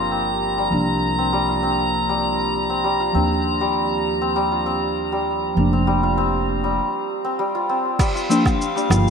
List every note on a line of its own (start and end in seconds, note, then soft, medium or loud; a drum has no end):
0.00 0.69 G1 medium
0.00 0.68 F3 medium
0.00 0.57 G3 medium
0.00 0.69 A#3 medium
0.00 2.44 A#3 medium
0.00 0.11 C4 medium
0.00 0.70 D4 medium
0.00 1.48 F4 medium
0.00 0.99 G4 medium
0.00 6.78 A#5 medium
0.11 1.18 C4 medium
0.58 0.77 G3 medium
0.70 3.12 C2 medium
0.70 3.10 F3 medium
0.70 3.11 A#3 medium
0.70 3.12 D4 medium
1.18 1.63 C4 medium
1.33 2.08 G3 medium
1.49 3.00 F4 medium
1.63 2.69 C4 medium
2.09 2.83 G3 medium
2.70 3.14 C4 medium
2.84 3.20 G3 medium
3.00 4.51 F4 medium
3.12 5.54 D#2 medium
3.12 5.53 F3 medium
3.12 5.53 A#3 medium
3.12 4.21 C4 medium
3.12 5.54 D4 medium
3.61 4.35 G3 medium
4.22 4.66 C4 medium
4.36 5.11 G3 medium
4.52 6.03 F4 medium
4.66 5.72 C4 medium
5.12 5.62 G3 medium
5.55 6.78 F1 medium
5.55 6.77 F3 medium
5.55 6.78 A#3 medium
5.59 6.79 D4 medium
5.73 6.17 C4 medium
5.87 6.63 G3 medium
6.03 7.54 F4 medium
6.18 7.24 C4 medium
6.64 7.38 G3 medium
7.25 7.69 C4 medium
7.39 7.98 G3 medium
7.55 8.15 F4 medium
7.69 8.29 C4 medium
7.99 8.75 G3 medium
7.99 9.10 F5 medium
7.99 kick loud
7.99 crash loud
7.99 low woodblock medium
7.99 shaker soft
8.15 9.10 F4 medium
8.15 shaker soft
8.29 8.53 F3 medium
8.29 8.54 A#3 medium
8.29 9.10 C4 medium
8.29 8.54 D4 medium
8.29 shaker medium
8.46 kick loud
8.46 low woodblock medium
8.46 shaker soft
8.61 shaker soft
8.76 9.10 G3 medium
8.76 shaker soft
8.89 9.10 G1 medium
8.89 9.10 F3 medium
8.89 9.10 A#3 medium
8.89 9.10 F4 loud
8.89 frame drum medium
8.89 low woodblock medium
8.89 shaker medium